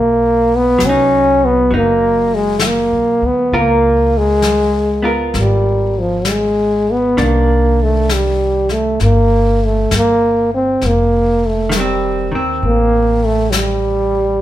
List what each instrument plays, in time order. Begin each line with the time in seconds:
Already playing: upright bass B1, trombone A#3
0.56 trombone B3
0.79 upright bass C2, hollow-body jazz guitar F#3, snare, hi-hat pedal
0.86 trombone C#4, hollow-body jazz guitar D#4
1.45 trombone B3
1.70 upright bass F#1, hollow-body jazz guitar F#3 D#4, brush sweep
1.76 trombone A#3
2.35 trombone G#3
2.59 trombone A3, snare, hi-hat pedal
2.66 trombone A#3
2.92 upright bass B1
3.22 upright bass D2, trombone B3
3.51 upright bass C#2, hollow-body jazz guitar F4 A#4, brush sweep
3.58 trombone A#3
4.18 trombone G#3
4.42 snare, hi-hat pedal
5.03 hollow-body jazz guitar B3 F4 A#4
5.34 upright bass G#1, brush sweep, snare
5.40 trombone G3
5.99 trombone F3
6.25 snare, hi-hat pedal
6.30 trombone G#3
6.91 trombone B3
7.17 upright bass C2, hollow-body jazz guitar D#3 D4, brush sweep, snare
7.22 trombone A#3
7.83 trombone A3
8.09 trombone G3, snare, hi-hat pedal
8.69 trombone A3, snare
9.00 upright bass G1, trombone A#3, brush sweep, snare
9.65 trombone A3
9.91 upright bass G1, snare, hi-hat pedal
9.96 trombone A#3
10.54 trombone C4
10.82 upright bass F1, brush sweep, snare
10.87 trombone A#3
11.46 trombone A3
11.69 hollow-body jazz guitar D#3, snare, hi-hat pedal
11.77 trombone G3, hollow-body jazz guitar C4
12.32 upright bass D#2, hollow-body jazz guitar D#3 C4
12.62 upright bass A1, trombone A#3, brush sweep
13.25 trombone A3
13.51 trombone F#3, snare, hi-hat pedal
13.56 trombone G3